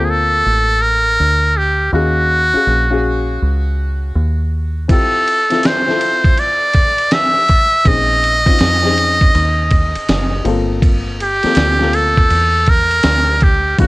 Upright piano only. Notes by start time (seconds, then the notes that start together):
Already playing: A#3 C4 F4 A4
1.92 C#4 F#4 G#4 F5
2.54 C#4 F#4 G#4 F5
2.91 C#4 F#4 G#4 F5
4.88 C4 E4 F4 G4
5.50 C4 E4 F4 A4
5.87 C4 E4 F4 A4
7.84 C4 C#4 D#4 G#4
8.46 C4 C#4 D#4 F4
8.83 C4 C#4 D#4 G#4
10.45 A#3 C4 F4 A4
11.43 A#3 C4 F4 A4
11.80 A#3 C4 F4 A4
13.78 G#3 C#4 F#4 F5